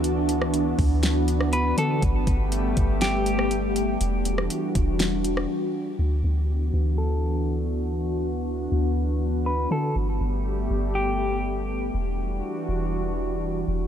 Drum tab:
HH |x-x-x-o-x-x-x-x-|x-x-x-x-x-x-x-x-|x-x-x-x-x-x-----|----------------|
SD |---r----o--r----|--------o--r----|---r----o--r----|----------------|
BD |------o---------|o-o---o---------|------o---------|----------------|

HH |----------------|----------------|----------------|
SD |----------------|----------------|----------------|
BD |----------------|----------------|----------------|